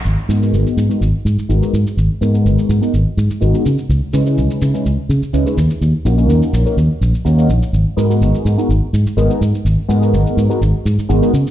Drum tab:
SH |x-xxxxxxx-xxxxxx|x-xxxxxxx-xxxxxx|x-xxxxxxx-xxxxxx|x-xxxxxxx-xxxxxx|

SH |x-xxxxxxx-xxxxxx|x-xxxxxxx-xxxxxx|